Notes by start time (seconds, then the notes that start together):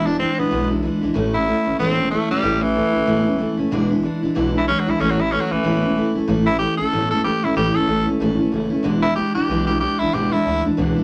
Already playing: E1
0.06 E3 G#3 D4 E4
0.19 E3 G#3 C4 D4 E4
0.38 E1 E3 G#3 B3 D4 E4
0.51 B1 E2 B2 E3 G#3 D4 E4
0.69 E3 G#3 D4 E4
0.83 E3 G#3 D4 E4
1.01 B1 E3 G#3 D4 E4
1.14 A1 A2 E3 A3 C#4 E4
1.33 A3 C#4 E4
1.47 E3 A3 C#4 E4
1.65 A1 A3 C#4 E4
1.79 E1 A2 E3 A3 C4 C#4 E4
1.97 A3 C#4 E4
2.11 E3 A3 C#4 E4
2.29 E1 G3 A3 C#4 E4
2.42 A1 A2 E3 A3 C#4 E4
2.61 E3 A3 C#4 E4
2.75 E3 A3 C#4 E4
2.93 A1 A3 C#4 E4
3.06 E1 A2 E3 A3 C#4 E4
3.26 A3 C#4 E4
3.38 E3 A3 C#4 E4
3.57 E1 A3 C#4 E4
3.71 E1 E2 B2 E3 G#3 D4 E4
3.90 E3 G#3 D4 E4
4.03 E3 G#3 D4 E4
4.22 E1 E3 G#3 D4 E4
4.35 B1 E2 B2 E3 G#3 D4 E4
4.53 E3 G#3 D4 E4
4.57 E4
4.68 E3 G#3 C#4 D4 E4
4.79 F#3
4.86 B1 E3 G#3 D4 E4
4.99 A1 A2 E3 A3 C#4 E4
5.10 F#3
5.19 A3 C#4 E4
5.31 E3 A3 C#4 E4
5.40 F#3
5.51 A1 E3 A3 C#4 E4
5.63 E1 A2 E3 A3 C#4 E4
5.82 A3 C#4 E4
5.96 E3 A3 C#4 E4
6.15 E1 A3 C#4 E4
6.28 A1 A2 E3 A3 C#4 E4
6.46 A3 C#4 E4
6.59 E3 A3 C#4 E4 G4
6.77 A1 A3 C#4 E4 A4
6.92 E1 A2 E3 A3 C#4 E4
7.11 A3 C#4 E4 A4
7.24 E3 A3 C#4 E4 G4
7.43 E1 A3 C#4 E4
7.55 A1 A2 E3 A3 C#4 E4 G4
7.75 A1 A3 C#4 E4 A4
7.87 A1 E3 A3 C#4 E4
8.06 A1 A3 C#4 E4
8.20 G#1 A2 E3 A3 C#4 E4
8.39 G#1 A3 C#4 E4
8.52 F#1 E3 A3 C#4 E4
8.70 F#1 A3 C#4 E4
8.83 E1 E2 B2 E3 G#3 D4 E4
9.02 E3 G#3 D4 E4
9.15 E3 G#3 D4 E4 G4
9.34 E1 G#3 D4 E4 G4
9.39 E3
9.49 B1 E2 B2 E3 G#3 D4 E4
9.67 E3 G#3 D4 E4 G4
9.80 E3 G#3 G4
9.84 D4 E4
9.99 B1 G#3 D4 E4
10.03 E3
10.13 E1 E2 B2 E3 G#3 D4 E4 G4
10.32 E1 E3 G#3 D4 E4
10.45 D2 E3 G#3 D4 E4
10.64 D2 E3 G#3 D4 E4
10.77 C#2 E2 B2 E3 G#3 D4 E4
10.96 C#2 E3 G#3 D4 E4